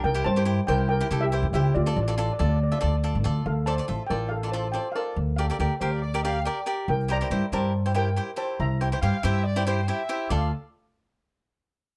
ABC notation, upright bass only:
X:1
M:4/4
L:1/16
Q:"Swing 16ths" 1/4=140
K:Dm
V:1 name="Upright bass" clef=bass
C,,2 G,,4 C,,4 C,,3 G,, ^C,,2 | D,,2 A,,,4 D,,4 D,,3 A,,, D,,2 | D,,4 A,,, z A,,,8 z2 | D,,4 D,, z D,,8 z2 |
C,,4 G,, z G,,8 z2 | C,,4 G,, z G,,8 z2 | D,,2 z12 z2 |]